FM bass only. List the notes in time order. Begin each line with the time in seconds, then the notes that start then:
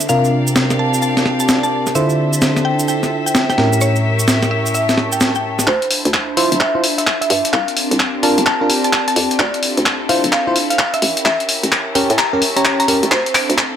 5.67 D2
6.05 D2
6.37 D1
6.52 D1
7.30 G2
7.53 C2
7.91 C2
8.23 G1
8.38 G1
9.16 F2
9.40 D2
9.78 D2
10.09 D1
10.24 D1
11.02 A1
11.26 A1
11.63 A1
11.95 A2
12.10 A2
13.03 A1
13.12 D2
13.50 D2